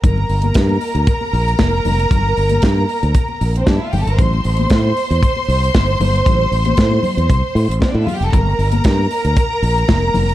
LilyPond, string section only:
\new Staff \with { instrumentName = "String section" } { \time 4/4 \key g \dorian \tempo 4 = 116 <bes' bes''>1~ | <bes' bes''>2~ \tuplet 3/2 { <bes' bes''>4 r16 <c' c''>16 <d' d''>16 <e' e''>16 <f' f''>16 <g' g''>16 <a' a''>16 <bes' bes''>16 } | <c'' c'''>1~ | <c'' c'''>2. \tuplet 3/2 { <c' c''>16 <d' d''>16 <e' e''>16 <f' f''>16 <g' g''>16 <a' a''>16 } |
<bes' bes''>1 | }